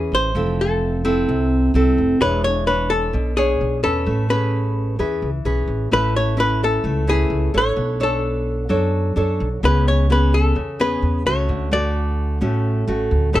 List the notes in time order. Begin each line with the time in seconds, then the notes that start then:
Already playing: E2 E3 C#4 G#4 B4
0.12 A1 C5
0.35 F1 F3 C4 E4 A4
0.61 A4
1.05 C4 E4 A4
1.29 C2 C3
1.74 C2 C4 E4 A4
1.98 F1
2.21 E1 E3 D4 G#4 B4 C#5
2.44 C#5
2.67 D4 B4 C#5
2.90 A4
3.13 B1 B2
3.37 D4 G#4 C#5
3.61 B1
3.83 E2 C#4 A4 B4
4.06 A1 A3
4.30 C#4 G#4 B4
4.99 E2 E3 C#4 G#4 B4
5.22 C#2
5.45 B1 C#4 G#4 B4
5.67 A1
5.91 A1 A3 C#4 E4 B4
6.16 C#5
6.37 C#4 E4 B4
6.64 A4
6.84 C#2 A3
7.07 C#4 E4 G#4 B4
7.30 C#2
7.54 A1 D4 A4 C#5
7.76 B1 B3
8.00 D4 A4 C#5
8.69 F#2 F#3 D4 A4 C#5
9.16 F#2 D4 A4 C#5
9.40 B1
9.63 C#2 C#3 B3 C#4 G#4 B4
9.88 C#5
10.10 B3 C#4 G#4 B4
10.34 A4
10.55 E2 C#3
10.80 B3 C#4 G#4 B4
11.02 E2
11.26 C#2 A3 C#4 F#4 C#5
11.49 D2 D3
11.71 A3 F#4 D5
12.41 A1 A2 A3 C#4 F#4
12.88 A1 A3 C#4 F#4
13.11 D2
13.33 A1 A3 C#4 G#4 A4 B4